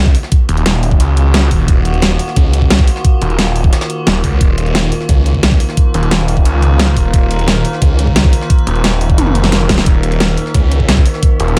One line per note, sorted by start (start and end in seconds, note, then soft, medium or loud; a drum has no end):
0.00 0.13 C#2 loud
0.00 11.59 D#3 medium
0.00 11.59 A#3 medium
0.00 9.82 F4 medium
0.00 4.39 F#4 medium
0.06 kick loud
0.06 snare medium
0.15 closed hi-hat medium
0.15 open hi-hat medium
0.23 snare medium
0.32 kick loud
0.32 closed hi-hat medium
0.32 closed hi-hat loud
0.49 0.99 D#1 loud
0.49 closed hi-hat medium
0.57 closed hi-hat soft
0.66 snare loud
0.66 closed hi-hat loud
0.66 closed hi-hat medium
0.74 snare soft
0.83 closed hi-hat medium
0.83 open hi-hat medium
0.91 kick loud
1.00 1.50 C#2 loud
1.00 closed hi-hat medium
1.00 closed hi-hat loud
1.17 closed hi-hat medium
1.34 snare loud
1.34 closed hi-hat medium
1.51 1.67 D#1 loud
1.51 kick medium
1.51 closed hi-hat medium
1.51 open hi-hat medium
1.68 2.18 D#1 loud
1.68 kick loud
1.68 closed hi-hat medium
1.68 closed hi-hat loud
1.85 closed hi-hat medium
1.94 closed hi-hat soft
2.02 snare loud
2.02 closed hi-hat medium
2.02 closed hi-hat loud
2.11 closed hi-hat soft
2.19 closed hi-hat medium
2.19 open hi-hat medium
2.28 snare soft
2.36 2.86 C#2 loud
2.36 kick loud
2.36 closed hi-hat medium
2.53 closed hi-hat medium
2.62 kick medium
2.70 snare loud
2.70 closed hi-hat medium
2.70 closed hi-hat loud
2.79 kick loud
2.79 snare medium
2.87 closed hi-hat medium
2.87 open hi-hat medium
2.96 snare soft
3.04 kick loud
3.04 closed hi-hat medium
3.21 3.71 D#1 loud
3.21 closed hi-hat medium
3.30 closed hi-hat soft
3.39 snare loud
3.39 closed hi-hat medium
3.39 closed hi-hat loud
3.47 snare soft
3.56 closed hi-hat medium
3.56 open hi-hat medium
3.64 kick loud
3.73 snare loud
3.73 closed hi-hat medium
3.81 snare loud
3.81 closed hi-hat medium
3.90 closed hi-hat medium
4.07 4.22 D#1 loud
4.07 snare loud
4.07 closed hi-hat medium
4.24 4.39 C#2 loud
4.24 kick medium
4.24 closed hi-hat medium
4.24 open hi-hat medium
4.41 4.91 D#1 loud
4.41 9.84 A#4 medium
4.41 kick loud
4.41 closed hi-hat medium
4.58 closed hi-hat medium
4.66 closed hi-hat soft
4.75 snare loud
4.75 closed hi-hat medium
4.83 closed hi-hat soft
4.92 closed hi-hat medium
4.92 open hi-hat medium
5.01 snare soft
5.09 5.59 C#2 loud
5.09 kick loud
5.09 closed hi-hat medium
5.26 closed hi-hat medium
5.35 kick medium
5.43 snare loud
5.43 closed hi-hat medium
5.52 kick loud
5.52 snare medium
5.60 closed hi-hat medium
5.60 open hi-hat medium
5.69 snare soft
5.77 kick loud
5.77 closed hi-hat medium
5.94 6.44 D#1 loud
5.94 closed hi-hat medium
6.03 closed hi-hat soft
6.11 snare loud
6.11 closed hi-hat medium
6.20 snare soft
6.28 closed hi-hat medium
6.28 open hi-hat medium
6.37 kick loud
6.45 6.95 C#2 loud
6.45 closed hi-hat medium
6.62 closed hi-hat medium
6.79 snare loud
6.79 closed hi-hat medium
6.96 7.12 D#1 loud
6.96 kick medium
6.96 closed hi-hat medium
6.96 open hi-hat medium
7.14 7.63 D#1 loud
7.14 kick loud
7.14 closed hi-hat medium
7.14 closed hi-hat loud
7.31 closed hi-hat medium
7.39 closed hi-hat soft
7.48 snare loud
7.48 closed hi-hat medium
7.56 closed hi-hat soft
7.65 closed hi-hat medium
7.65 open hi-hat medium
7.73 snare soft
7.82 8.32 C#2 loud
7.82 kick loud
7.82 closed hi-hat medium
7.99 closed hi-hat medium
8.07 kick medium
8.16 snare loud
8.16 closed hi-hat medium
8.24 kick loud
8.24 snare medium
8.33 closed hi-hat medium
8.33 open hi-hat medium
8.41 snare medium
8.50 kick loud
8.50 closed hi-hat loud
8.50 closed hi-hat medium
8.59 closed hi-hat soft
8.67 9.17 D#1 loud
8.67 closed hi-hat medium
8.76 closed hi-hat soft
8.84 snare loud
8.84 closed hi-hat medium
8.93 snare soft
9.01 closed hi-hat medium
9.01 open hi-hat medium
9.10 kick loud
9.10 closed hi-hat soft
9.18 9.85 F1 loud
9.18 closed hi-hat medium
9.18 high tom medium
9.27 high tom medium
9.35 closed hi-hat medium
9.44 snare medium
9.44 closed hi-hat medium
9.52 snare loud
9.52 closed hi-hat loud
9.61 closed hi-hat medium
9.69 kick medium
9.69 snare loud
9.69 closed hi-hat medium
9.69 open hi-hat medium
9.78 snare medium
9.78 closed hi-hat soft
9.86 10.36 D#1 loud
9.86 11.59 D#4 medium
9.86 11.59 F#4 medium
9.86 kick loud
9.86 closed hi-hat medium
9.86 closed hi-hat loud
10.03 closed hi-hat medium
10.12 closed hi-hat soft
10.20 snare loud
10.20 closed hi-hat loud
10.20 closed hi-hat medium
10.29 closed hi-hat soft
10.37 closed hi-hat medium
10.37 open hi-hat medium
10.46 snare soft
10.54 11.04 C#2 loud
10.54 kick loud
10.54 closed hi-hat medium
10.72 closed hi-hat medium
10.80 kick medium
10.89 snare loud
10.89 closed hi-hat medium
10.97 kick loud
10.97 snare medium
11.06 closed hi-hat medium
11.06 open hi-hat medium
11.14 snare soft
11.23 kick loud
11.23 closed hi-hat medium
11.23 closed hi-hat loud
11.40 11.59 D#1 loud
11.40 closed hi-hat medium
11.48 closed hi-hat soft